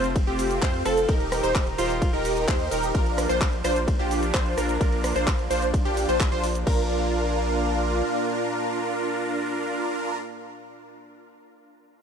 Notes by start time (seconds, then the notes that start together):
Already playing: F1 A3 C4 F4
0.04 closed hi-hat, shaker
0.16 kick, closed hi-hat, ride, shaker
0.27 F1 C4 F4 G4
0.39 open hi-hat, shaker
0.51 closed hi-hat, shaker
0.62 F2 C4 F4 C5, kick, clap, closed hi-hat, ride, shaker
0.74 closed hi-hat
0.85 F1 C4 F4 A4, cross-stick, open hi-hat, shaker
0.97 closed hi-hat, shaker
1.08 D#1 D#3 D#4 G4 A#4, kick, closed hi-hat, ride, shaker
1.20 closed hi-hat
1.32 cross-stick, open hi-hat, shaker
1.43 D#1 D#4 G4 C5, closed hi-hat, shaker
1.55 kick, clap, closed hi-hat, ride, shaker
1.67 closed hi-hat
1.78 D#1 D#4 F4 G4 C5, open hi-hat, shaker
1.90 closed hi-hat, shaker
2.02 kick, closed hi-hat, ride, shaker
2.13 D#1 D#4 G4 A#4
2.25 open hi-hat, shaker
2.37 closed hi-hat, shaker
2.48 D#2 D#4 G4 C5, kick, clap, closed hi-hat, ride, shaker
2.60 closed hi-hat
2.71 D#1 D#4 G4 A#4, open hi-hat, shaker
2.83 closed hi-hat, shaker
2.95 A#1 F3 A#3 D4 F4 A#4, kick, closed hi-hat, ride, shaker
3.06 closed hi-hat
3.18 cross-stick, open hi-hat, shaker
3.29 A#1 D4 F4 C5, closed hi-hat, shaker
3.41 kick, clap, closed hi-hat, ride, shaker
3.53 closed hi-hat
3.64 A#1 D4 F4 C5, cross-stick, open hi-hat, shaker
3.76 closed hi-hat, shaker
3.88 kick, closed hi-hat, ride, shaker
3.99 A#1 D4 F4 G4
4.11 open hi-hat, shaker
4.23 closed hi-hat, shaker
4.34 A#1 D4 F4 C5, kick, clap, closed hi-hat, ride, shaker
4.46 closed hi-hat
4.57 A#1 D4 F4 A#4, cross-stick, open hi-hat, shaker
4.69 closed hi-hat, shaker
4.81 A#1 D4 F4 A#4, kick, closed hi-hat, ride, shaker
4.92 closed hi-hat
5.04 cross-stick, open hi-hat, shaker
5.15 A#1 D4 F4 C5, closed hi-hat, shaker
5.27 kick, clap, closed hi-hat, ride, shaker
5.39 closed hi-hat
5.50 A#1 D4 F4 C5, open hi-hat, shaker
5.62 closed hi-hat, shaker
5.74 kick, closed hi-hat, ride, shaker
5.85 A#1 D4 F4 G4, closed hi-hat
5.97 open hi-hat, shaker
6.09 A#1 D4 F4 C5, closed hi-hat, shaker
6.20 kick, clap, closed hi-hat, ride, shaker
6.32 A#1 D4 F4 C5, closed hi-hat
6.44 open hi-hat, shaker
6.55 closed hi-hat, shaker
6.67 A#1 A#2 A#3 D4 F4 A#4, kick, crash